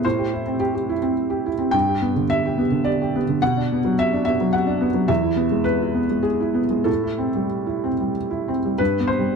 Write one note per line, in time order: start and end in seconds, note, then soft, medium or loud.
0.05 1.70 A2 medium
0.05 0.60 C5 medium
0.19 0.41 G4 soft
0.33 0.55 E4 soft
0.46 0.91 C4 soft
0.60 0.73 G4 medium
0.75 0.97 G4 soft
0.89 1.11 E4 soft
1.02 1.48 C4 soft
1.30 1.53 G4 soft
1.46 1.69 E4 soft
1.59 1.73 C4 soft
1.71 3.37 G2 medium
1.71 2.29 G5 medium
1.88 2.11 G4 soft
2.02 2.24 B3 soft
2.16 2.61 D3 soft
2.30 2.86 E5 medium
2.45 2.67 G4 soft
2.58 2.81 B3 soft
2.72 3.17 D3 soft
2.84 3.41 D5 medium
3.02 3.23 G4 soft
3.16 3.37 B3 soft
3.28 3.42 D3 soft
3.42 5.06 B2 medium
3.42 3.97 F#5 medium
3.57 3.78 D4 soft
3.72 3.93 B3 soft
3.85 4.29 F#3 soft
3.99 4.23 E5 medium
4.13 4.35 D4 soft
4.25 4.48 B3 soft
4.25 4.53 E5 medium
4.41 4.85 F#3 soft
4.53 5.09 F#5 medium
4.67 4.89 D4 soft
4.81 5.03 B3 soft
4.94 5.09 F#3 soft
5.08 6.83 E2 medium
5.08 5.66 E5 medium
5.23 5.46 E4 soft
5.36 5.60 B3 soft
5.52 5.99 G#3 soft
5.64 6.25 B4 medium
5.82 6.05 E4 soft
5.95 6.19 B3 soft
6.10 6.59 G#3 soft
6.23 6.86 G#4 medium
6.40 6.65 E4 soft
6.54 6.80 B3 soft
6.70 6.87 G#3 soft
6.84 8.74 A2 medium
6.84 8.15 A4 medium
7.03 7.30 E4 soft
7.18 7.45 C4 soft
7.35 7.88 G3 soft
7.67 7.94 E4 soft
7.84 8.10 C4 soft
8.00 8.51 G3 soft
8.31 8.57 E4 soft
8.48 8.73 C4 soft
8.65 8.80 G3 soft
8.78 9.36 G2 soft
8.78 9.09 B4 medium
9.00 9.32 B3 soft
9.07 9.36 C5 medium
9.19 9.36 G3 soft